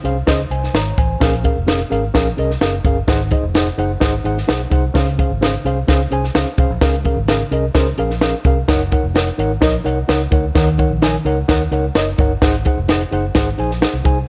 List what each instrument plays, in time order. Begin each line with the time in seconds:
0.04 fingered electric bass C2, reed electric piano C#4 G#4 C5 F5, closed hi-hat
0.27 fingered electric bass C#2, reed electric piano C#4 G#4 C5 D#5, kick, snare, closed hi-hat
0.50 fingered electric bass C2, reed electric piano C5 G#5, closed hi-hat
0.64 snare
0.74 fingered electric bass G#1, reed electric piano C#5 A#5, snare, closed hi-hat
0.98 fingered electric bass A1, reed electric piano C5 G#5, kick, closed hi-hat
1.20 fingered electric bass A#1, reed electric piano A#2 C#4 G#4 A#4 F5, kick, snare, closed hi-hat
1.33 closed hi-hat
1.43 reed electric piano C#4 G#4 A#4 F5, kick, closed hi-hat
1.56 fingered electric bass F1
1.67 reed electric piano C#4 G#4 A#4 F5, snare, closed hi-hat
1.80 closed hi-hat
1.90 fingered electric bass G#1, reed electric piano C#4 G#4 A#4 F5, closed hi-hat
2.14 fingered electric bass A#1, reed electric piano C#4 G#4 A#4 F5, kick, snare, closed hi-hat
2.37 fingered electric bass C2, reed electric piano C#4 G#4 A#4 D#5, closed hi-hat
2.50 snare
2.61 fingered electric bass F#1, reed electric piano C#4 G#4 A#4 F5, snare, closed hi-hat
2.84 fingered electric bass G1, reed electric piano C#4 G#4 A#4 F5, kick, closed hi-hat
3.08 fingered electric bass G#1, reed electric piano G#2 D#4 G#4 C5 F#5, kick, snare, closed hi-hat
3.31 reed electric piano D#4 G#4 C5 D#5, kick, closed hi-hat
3.43 fingered electric bass F1
3.54 reed electric piano D#4 G#4 C5 F#5, snare, closed hi-hat
3.66 closed hi-hat
3.78 fingered electric bass F#1, reed electric piano D#4 G#4 C5 F#5, closed hi-hat
4.00 fingered electric bass G#1, reed electric piano D#4 G#4 C5 F#5, kick, snare, closed hi-hat
4.24 fingered electric bass G#1, reed electric piano D#4 G#4 C5 F#5, closed hi-hat
4.38 snare
4.47 fingered electric bass B1, reed electric piano D#4 G#4 C5 F#5, snare, closed hi-hat
4.70 fingered electric bass C2, reed electric piano D#4 G#4 C5 F#5, kick, closed hi-hat
4.94 fingered electric bass C#2, reed electric piano C#3 C#4 G#4 C5 F5, kick, snare, closed hi-hat
5.08 closed hi-hat
5.18 reed electric piano C#4 G#4 C5 F5, kick, closed hi-hat
5.30 fingered electric bass G#1
5.41 reed electric piano C#4 G#4 C5 F5, snare, closed hi-hat
5.54 closed hi-hat
5.65 fingered electric bass C2, reed electric piano C#4 G#4 C5 F5, closed hi-hat
5.88 fingered electric bass C#2, reed electric piano C#4 G#4 C5 F5, kick, snare, closed hi-hat
6.11 fingered electric bass C2, reed electric piano C#4 G#4 C5 G#5, closed hi-hat
6.24 snare
6.35 fingered electric bass C#2, reed electric piano C#4 G#4 C5 F5, snare, closed hi-hat
6.58 fingered electric bass C2, reed electric piano C#4 G#4 C5 F5, kick, closed hi-hat
6.70 fingered electric bass A#1
6.81 fingered electric bass C#2, reed electric piano C#3 C#4 G#4 A#4 F5, kick, snare, closed hi-hat
6.93 closed hi-hat
7.04 reed electric piano C#4 G#4 A#4 F5, kick, closed hi-hat
7.17 fingered electric bass G#1
7.28 reed electric piano C#4 G#4 A#4 F5, snare, closed hi-hat
7.40 closed hi-hat
7.51 fingered electric bass C2, reed electric piano C#4 G#4 A#4 D#5, closed hi-hat
7.74 fingered electric bass C#2, reed electric piano C#4 G#4 A#4 C5, kick, snare, closed hi-hat
7.97 fingered electric bass A#1, reed electric piano C#4 G#4 A#4 F5, closed hi-hat
8.10 snare
8.21 reed electric piano C#4 G#4 A#4 F5, snare, closed hi-hat
8.44 fingered electric bass C2, reed electric piano C#4 G#4 A#4 F5, kick, closed hi-hat
8.68 fingered electric bass F#1, reed electric piano D#4 A#4 C#5 F#5, kick, snare, closed hi-hat
8.80 closed hi-hat
8.91 reed electric piano D#4 A#4 C#5 F#5, kick, closed hi-hat
9.03 fingered electric bass F1
9.14 reed electric piano D#4 A#4 C#5 F#5, snare, closed hi-hat
9.27 closed hi-hat
9.38 fingered electric bass G#1, reed electric piano D#4 A#4 C#5 F#5, closed hi-hat
9.61 fingered electric bass A#1, reed electric piano D#4 A#4 C#5 D#5, kick, snare, closed hi-hat
9.84 fingered electric bass C2, reed electric piano D#4 A#4 C#5 F#5, closed hi-hat
10.08 fingered electric bass C#2, reed electric piano D#4 A#4 C#5 F#5, snare, closed hi-hat
10.31 fingered electric bass D2, reed electric piano D#4 A#4 C#5 F#5, kick, closed hi-hat
10.55 fingered electric bass D#2, reed electric piano D#3 D#4 A#4 C#5 F#5, kick, snare, closed hi-hat
10.67 closed hi-hat
10.78 reed electric piano D#4 A#4 C#5 F#5, kick, closed hi-hat
10.90 fingered electric bass A#1
11.02 reed electric piano D#4 A#4 C#5 G#5, snare, closed hi-hat
11.14 closed hi-hat
11.25 fingered electric bass C#2, reed electric piano D#4 A#4 C#5 F#5, closed hi-hat
11.48 fingered electric bass D#2, reed electric piano D#4 A#4 C#5 F#5, kick, snare, closed hi-hat
11.71 fingered electric bass C#2, reed electric piano D#4 A#4 C#5 F#5, closed hi-hat
11.95 fingered electric bass F#1, reed electric piano D#4 A#4 C#5 D#5, snare, closed hi-hat
12.18 fingered electric bass G1, reed electric piano D#4 A#4 C#5 F#5, kick, closed hi-hat
12.42 fingered electric bass G#1, reed electric piano G#2 D#4 G#4 C5 F#5, kick, snare, closed hi-hat
12.54 closed hi-hat
12.65 reed electric piano D#4 G#4 C5 F#5, kick, closed hi-hat
12.77 fingered electric bass F1
12.88 reed electric piano D#4 G#4 C5 F#5, snare, closed hi-hat
13.00 closed hi-hat
13.11 fingered electric bass F#1, reed electric piano D#4 G#4 C5 F#5, closed hi-hat
13.35 fingered electric bass G#1, reed electric piano D#4 G#4 C5 F#5, kick, snare, closed hi-hat
13.58 fingered electric bass A#1, reed electric piano D#4 G#4 C5 G#5, closed hi-hat
13.71 snare
13.81 reed electric piano D#4 G#4 C5 F#5, snare, closed hi-hat
13.93 fingered electric bass C2
14.04 fingered electric bass C2, reed electric piano D#4 G#4 C5 G#5, kick, closed hi-hat